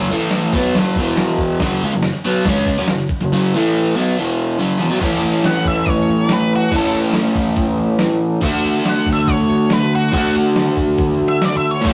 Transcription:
Already playing: F#2 C#3 F#3
0.11 A2 E3 A3
0.31 snare, crash
0.53 B2 F#3 B3, kick
0.75 F#2 C#3 F#3, snare, crash
0.96 E2 B2 E3, kick
1.17 snare, crash
1.38 kick
1.60 F#2 C#3 F#3, kick, snare, crash
1.83 C#3 G#3
1.93 F#2 C#3
2.02 snare, crash
2.25 B2 F#3 B3
2.45 C#3 G#3 C#4, kick, snare, crash
2.67 kick
2.79 F#3 C#4
2.88 F#2 C#3, snare, crash
3.09 kick
3.21 F#2 C#3
3.32 F#2 C#3 F#3
3.54 A2 E3 A3
3.96 B2 F#3 B3
4.18 E2 B2 E3
4.59 F#2 C#3 F#3
4.79 E2 B2
4.90 B2 F#3
5.00 A2 E3 A3 C#4, kick, open hi-hat, crash
5.05 E4
5.44 F#5, snare, open hi-hat
5.65 E5, kick
5.85 kick, open hi-hat
5.89 C#5
6.29 snare, open hi-hat
6.33 B4
6.56 F#4
6.71 A2 E3 A3, kick, open hi-hat
6.75 C#4 E4 A4
7.13 snare, open hi-hat
7.36 kick
7.56 kick, open hi-hat
7.99 snare, open hi-hat
8.41 D3 A3 D4, kick, open hi-hat
8.46 F#4
8.85 snare, open hi-hat
8.89 F#5
9.06 kick
9.13 E5
9.28 C#5, kick, open hi-hat
9.70 B4, snare, open hi-hat
9.95 F#4
10.12 D3 A3 D4 F#4, kick, open hi-hat
10.17 F#4
10.56 snare, open hi-hat
10.77 kick
10.98 kick, open hi-hat
11.28 E5
11.41 D5, snare, open hi-hat
11.57 E5
11.71 C#5
11.81 A2 E3, kick, crash
11.86 A3 C#4 E4

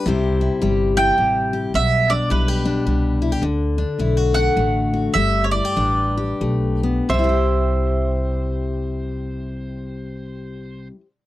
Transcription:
0.06 C2 C3 G3 E4 G4 C5
0.41 E4
0.62 G1 G3 G4
0.97 E4 G5
1.18 A1 G3
1.53 G4
1.74 B1 B2 E5
2.10 D4 D5
2.30 B1 G3 E4 B4
2.48 G4
2.65 D4
2.86 C2 G3
3.22 E4
3.32 G4
3.42 D2 D3
3.78 D4
3.99 B1 A3 E4
4.17 F#4
4.34 D4 F#5
4.56 A1 A3
4.94 F#4
5.14 G1 G3 E5
5.44 C#5
5.51 E4 D5
5.65 G4
5.77 A1 D4 B4
6.17 G4
6.41 B1 A3
6.83 B3
7.09 C2 C3 C5 E5
7.14 G3
7.19 E4
7.24 G4
7.29 C5

